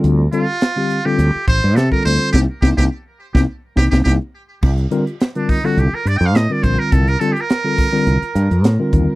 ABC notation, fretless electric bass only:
X:1
M:4/4
L:1/16
Q:"Swing 16ths" 1/4=105
K:Cdor
V:1 name="Fretless electric bass" clef=bass
D,,2 z6 D,, z A,,, G,, C, z D,, z | C,, z C,, C,, z3 C,, z2 C,, C,, C,, z3 | C,,2 z6 C,, z G,, F,, A,, z B,,, z | C,,2 z6 C,, z G,, F,, A,, z E,, z |]